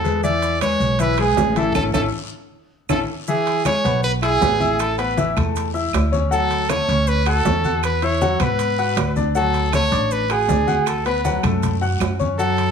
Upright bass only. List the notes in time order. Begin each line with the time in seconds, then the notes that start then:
Already playing: E2
0.80 B1
1.37 A1
1.75 A1
1.94 A1
2.89 A1
3.84 B1
4.41 A1
5.37 E2
5.93 D2
6.88 D2
7.45 E2
8.40 G#2
8.96 D2
9.92 A1
10.48 D2
11.43 F#2
12.00 F#2